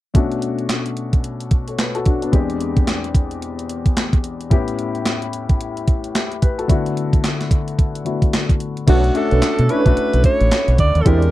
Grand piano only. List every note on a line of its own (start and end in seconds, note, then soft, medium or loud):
0.14 2.28 B2 medium
0.14 2.29 A3 medium
0.14 1.49 C#4 medium
0.14 1.49 D4 medium
0.14 1.49 F#4 medium
1.68 1.78 A4 soft
1.68 1.78 C#5 medium
1.78 1.94 B4 medium
1.95 2.04 F#4 medium
1.95 2.05 A4 medium
2.06 2.21 D4 medium
2.06 2.22 F#4 medium
2.22 2.49 B3 medium
2.22 2.32 D4 medium
2.32 4.47 E2 medium
2.32 4.47 G#3 medium
2.32 4.47 C4 medium
2.32 4.48 D4 medium
2.32 4.48 G4 medium
4.50 6.65 A2 medium
4.50 6.65 B3 medium
4.50 6.65 C#4 medium
4.50 6.12 E4 medium
4.50 6.12 G4 medium
6.15 6.41 E4 soft
6.15 6.41 G4 medium
6.42 6.58 G4 medium
6.42 6.58 B4 medium
6.58 6.69 F#4 medium
6.58 6.84 A4 medium
6.68 8.02 D3 medium
6.68 8.03 A3 medium
6.68 8.03 B3 medium
6.68 8.03 E4 medium
6.68 8.04 F#4 medium
8.05 8.87 D3 medium
8.05 8.85 A3 medium
8.05 8.87 B3 soft
8.05 8.88 E4 soft
8.05 8.87 F#4 medium
8.87 9.12 A3 medium
8.87 9.12 C#4 medium
8.87 9.13 D4 medium
8.87 9.13 F#4 medium
9.14 9.64 A3 medium
9.14 9.65 C#4 medium
9.14 9.65 D4 medium
9.14 9.65 F#4 medium
9.69 9.84 A3 medium
9.69 9.84 C#4 medium
9.69 9.84 D4 medium
9.69 9.84 E4 medium
9.85 10.80 A3 medium
9.85 10.80 C#4 medium
9.85 10.80 D4 medium
9.85 10.81 F#4 medium
11.05 11.30 G#3 medium
11.05 11.31 C4 medium
11.05 11.31 D4 medium
11.05 11.31 G4 medium